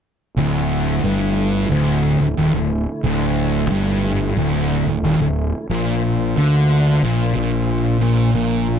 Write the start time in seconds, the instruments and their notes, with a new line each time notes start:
0.36 fingered electric bass D1, distorted electric guitar D2, tonewheel organ D3 A3 E4
1.04 fingered electric bass G1, distorted electric guitar G2
1.70 fingered electric bass D1, distorted electric guitar D2
2.20 fingered electric bass D1, distorted electric guitar D2
2.38 fingered electric bass D#1, distorted electric guitar D#2
2.54 fingered electric bass D1, distorted electric guitar D2
3.04 fingered electric bass D1, distorted electric guitar D2
3.70 fingered electric bass G1, distorted electric guitar G2
4.37 fingered electric bass D1, distorted electric guitar D2
4.87 fingered electric bass D1, distorted electric guitar D2
5.03 fingered electric bass D#1, distorted electric guitar D#2
5.20 fingered electric bass D1, distorted electric guitar D2
5.69 fingered electric bass A#1, distorted electric guitar A#2, tonewheel organ A#3 F4 C5
6.37 fingered electric bass D2, distorted electric guitar D3
7.03 fingered electric bass A#1, distorted electric guitar A#2
7.35 fingered electric bass A#1, distorted electric guitar A#2
8.01 fingered electric bass A#1, distorted electric guitar A#2
8.34 fingered electric bass A#1, distorted electric guitar A#2, tonewheel organ A#4